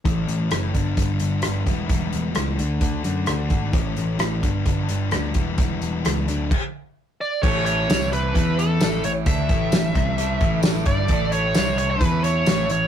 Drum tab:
CC |--------|--------|--------|----x---|
HH |xxxxxxxx|xxxxxxxx|xxxxxxxx|xxxx----|
TB |--------|--------|--------|--------|
SD |--r---r-|--r---r-|--r---r-|--r-----|
BD |o--oo--o|o---o--o|o--oo--o|o---o---|

CC |x-------|--------|--------|
HH |-xxxxxxx|xxxxxxxx|xxxxxxxx|
TB |--x---x-|--x---x-|--x---x-|
SD |--o---o-|--o---o-|--o---o-|
BD |o---o---|oo-o-o-o|o---o---|